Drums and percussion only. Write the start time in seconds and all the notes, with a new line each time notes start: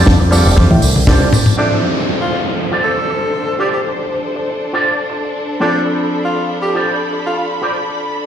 0.07 kick, snare, tambourine
0.32 open hi-hat, tambourine
0.45 tambourine
0.57 kick, snare, high tom, tambourine
0.71 high tom
0.82 open hi-hat, tambourine
0.96 mid tom, tambourine
1.07 kick, snare, mid tom, tambourine
1.33 mid tom, open hi-hat, tambourine
1.46 mid tom, tambourine